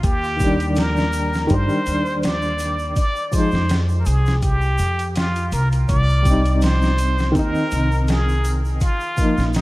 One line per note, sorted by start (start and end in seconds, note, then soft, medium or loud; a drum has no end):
0.03 1.47 D#2 medium
0.03 0.78 G4 loud
0.03 kick loud
0.03 closed hi-hat medium
0.03 shaker soft
0.24 shaker soft
0.37 1.44 D#3 medium
0.37 kick medium
0.37 closed hi-hat medium
0.37 shaker medium
0.41 1.46 G3 medium
0.41 1.48 D4 medium
0.60 closed hi-hat soft
0.60 shaker soft
0.76 1.53 A#4 loud
0.76 snare loud
0.76 closed hi-hat medium
0.76 shaker soft
0.96 snare medium
0.96 shaker soft
1.13 closed hi-hat medium
1.13 shaker medium
1.33 snare soft
1.33 shaker soft
1.47 1.68 G2 medium
1.47 2.93 D#3 medium
1.47 2.94 G3 medium
1.47 kick loud
1.47 closed hi-hat medium
1.47 shaker soft
1.51 2.96 D4 loud
1.51 2.26 C5 loud
1.69 shaker soft
1.86 2.93 D#2 medium
1.86 closed hi-hat medium
1.86 shaker medium
2.06 shaker soft
2.23 2.96 D5 loud
2.23 snare loud
2.23 closed hi-hat medium
2.23 shaker medium
2.42 shaker soft
2.59 closed hi-hat medium
2.59 shaker loud
2.79 shaker soft
2.96 3.35 D5 loud
2.96 kick loud
2.96 closed hi-hat medium
2.96 shaker medium
3.16 shaker soft
3.31 3.58 F3 medium
3.31 3.58 G#3 medium
3.31 3.59 D#4 medium
3.31 3.80 C5 loud
3.31 kick medium
3.31 closed hi-hat medium
3.31 shaker medium
3.52 4.03 F2 medium
3.52 snare soft
3.52 shaker soft
3.69 snare loud
3.69 closed hi-hat medium
3.69 shaker soft
3.89 shaker soft
4.00 4.07 A#4 medium
4.06 4.76 C2 medium
4.06 4.43 G#4 medium
4.06 closed hi-hat medium
4.06 shaker medium
4.26 snare soft
4.26 shaker soft
4.42 5.17 G4 loud
4.42 kick loud
4.42 closed hi-hat medium
4.42 shaker soft
4.61 shaker soft
4.78 5.49 F2 medium
4.78 closed hi-hat medium
4.78 shaker medium
4.99 closed hi-hat soft
4.99 shaker soft
5.16 5.52 F4 loud
5.16 snare loud
5.16 closed hi-hat medium
5.16 shaker soft
5.35 closed hi-hat soft
5.35 shaker soft
5.52 5.85 C2 medium
5.52 5.69 A#4 medium
5.52 closed hi-hat medium
5.52 shaker medium
5.72 closed hi-hat soft
5.72 shaker soft
5.89 7.32 C2 medium
5.89 6.58 D5 loud
5.89 kick loud
5.89 closed hi-hat medium
5.89 shaker soft
6.09 shaker soft
6.22 7.30 G3 medium
6.22 7.31 C4 medium
6.22 kick medium
6.22 closed hi-hat medium
6.22 shaker medium
6.30 7.33 D#4 medium
6.45 closed hi-hat soft
6.45 shaker soft
6.61 7.38 C5 loud
6.61 snare loud
6.61 closed hi-hat medium
6.61 shaker medium
6.82 snare medium
6.82 shaker soft
6.98 closed hi-hat medium
6.98 shaker medium
7.18 snare soft
7.18 shaker soft
7.32 7.53 D#2 medium
7.32 8.78 D#3 medium
7.32 8.80 C4 medium
7.32 kick loud
7.32 closed hi-hat medium
7.36 8.81 D#4 loud
7.36 8.10 A#4 loud
7.36 shaker soft
7.55 shaker soft
7.71 8.79 C2 medium
7.71 closed hi-hat medium
7.71 shaker medium
7.92 shaker soft
8.08 8.56 G#4 medium
8.08 snare loud
8.08 closed hi-hat medium
8.08 shaker soft
8.29 shaker soft
8.45 closed hi-hat medium
8.45 shaker medium
8.65 shaker soft
8.81 9.56 F4 loud
8.81 kick loud
8.81 closed hi-hat medium
8.81 shaker soft
9.00 shaker soft
9.17 9.43 F3 medium
9.17 9.44 A#3 medium
9.17 9.45 D#4 medium
9.17 kick medium
9.17 closed hi-hat medium
9.17 shaker medium
9.38 9.61 A#1 medium
9.38 snare soft
9.38 shaker soft
9.53 9.61 D#4 medium
9.53 snare loud
9.53 closed hi-hat medium
9.53 shaker soft